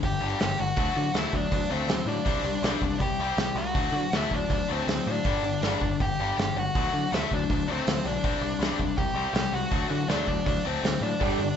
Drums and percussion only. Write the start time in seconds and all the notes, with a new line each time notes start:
0.03 kick, open hi-hat
0.40 snare, open hi-hat
0.76 kick, open hi-hat
1.14 snare, open hi-hat
1.33 kick
1.52 kick, open hi-hat
1.89 snare, open hi-hat
2.26 kick, open hi-hat
2.63 snare, open hi-hat
2.82 kick
3.00 kick, open hi-hat
3.37 snare, open hi-hat
3.75 kick, open hi-hat
4.12 snare, open hi-hat
4.31 kick
4.50 kick, open hi-hat
4.88 snare, open hi-hat
5.24 kick, open hi-hat
5.62 snare, open hi-hat
5.81 kick
6.00 kick, open hi-hat
6.38 snare, open hi-hat
6.75 kick, open hi-hat
7.13 snare, open hi-hat
7.31 kick
7.50 kick, open hi-hat
7.87 snare, open hi-hat
8.24 kick, open hi-hat
8.62 snare, open hi-hat
8.80 kick
8.98 kick, open hi-hat
9.35 snare, open hi-hat
9.71 kick, open hi-hat
10.09 snare, open hi-hat
10.28 kick
10.46 kick, open hi-hat
10.84 snare, open hi-hat
11.21 kick, open hi-hat